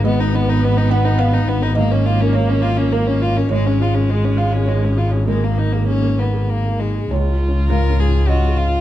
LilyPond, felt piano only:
\new Staff \with { instrumentName = "Felt piano" } { \time 3/4 \key cis \mixolydian \tempo 4 = 102 << { dis''4. fis''8 eis''4 | dis''4 cis''4 ais'4 | cis''4. eis''8 cis''4 | ais'4 gis'4 r4 |
cis''4 eis''4 dis''4 | } \\ { gis,16 b16 dis'16 b'8 b16 dis'16 b'8 b16 dis'16 b'16 | gis,16 cis'16 eis'16 ais'8 cis'16 eis'16 ais'8 cis'16 eis'16 ais'16 | gis,16 cis'16 eis'16 gis'8 cis'16 eis'16 gis'8 cis'16 eis'16 gis'16 | gis,16 ais16 dis'16 gis'8 ais16 dis'16 gis'8 ais16 dis'16 gis'16 |
\tuplet 3/2 { cis,8 eis'8 cis'8 gis,8 cis'8 eis'8 cis'8 gis'8 eis'8 } | } >> }